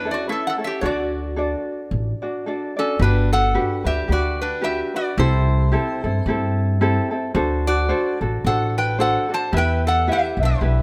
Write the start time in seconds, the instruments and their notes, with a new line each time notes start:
Already playing: ukulele A4, resonator guitar played with a steel bar B4
0.05 ukulele C#4 E4 A4
0.11 resonator guitar played with a steel bar F#4 D5
0.27 ukulele C#4 E4 A4 B4, resonator guitar played with a steel bar E5
0.32 resonator guitar played with a steel bar A4
0.47 resonator guitar played with a steel bar A4 F#5
0.58 ukulele C#4 E4 A4
0.64 resonator guitar played with a steel bar G4 E5
0.81 upright bass D2, ukulele D4 F#4 A4 D5, resonator guitar played with a steel bar D5
0.86 resonator guitar played with a steel bar F#4
1.36 ukulele D4 F#4 A4 D5
1.91 upright bass A1
2.22 ukulele D4 F#4 D5
2.46 ukulele D4 F#4 A4 D5
2.77 resonator guitar played with a steel bar C#4 A4, ukulele D4 F#4 D5
2.99 upright bass G1, ukulele D4 F#4 G4 B4, resonator guitar played with a steel bar B4
3.04 resonator guitar played with a steel bar D4
3.33 resonator guitar played with a steel bar A4 F#5
3.55 ukulele D4 F#4 G4 B4
3.84 upright bass D2, ukulele D4 F#4 B4, resonator guitar played with a steel bar G4 E5
4.08 upright bass D2, ukulele D4 F#4 G4 B4
4.12 resonator guitar played with a steel bar F#4 D5
4.41 resonator guitar played with a steel bar D4 B4
4.61 ukulele D4 F#4 G4 B4, resonator guitar played with a steel bar G4 E5
4.94 ukulele D4 F#4 B4, resonator guitar played with a steel bar F#4 D5
5.18 upright bass C2, ukulele C4 E4 G4 A4, resonator guitar played with a steel bar E4 C5
5.72 ukulele C4 E4 G4 A4
6.03 upright bass G2, ukulele C4 E4 A4
6.26 upright bass G2, ukulele C4 E4 G4 A4
6.81 ukulele C4 E4 G4 A4
7.11 ukulele C4 E4 A4
7.34 upright bass D2, ukulele D4 F#4 A4 C5
7.67 resonator guitar played with a steel bar F#4 D5
7.89 ukulele D4 F#4 A4 C5
8.21 upright bass A1, ukulele D4 F#4 A4
8.44 upright bass A1, ukulele D4 F#4 A4 C5, resonator guitar played with a steel bar A4 F#5
8.78 resonator guitar played with a steel bar B4 G5
8.98 ukulele D4 F#4 A4 C5, resonator guitar played with a steel bar A4 F#5
9.29 ukulele D4 F#4 A4
9.34 resonator guitar played with a steel bar C5 A5
9.52 upright bass E2, ukulele E4 G4 B4 E5
9.57 resonator guitar played with a steel bar B4 G5
9.87 resonator guitar played with a steel bar A4 F#5
10.07 ukulele E4 G4 B4 E5
10.12 resonator guitar played with a steel bar G4 E5
10.37 upright bass B1, ukulele E5
10.41 resonator guitar played with a steel bar D4, ukulele E4 B4
10.45 resonator guitar played with a steel bar B4
10.61 upright bass B1, ukulele E4 G4 B4 E5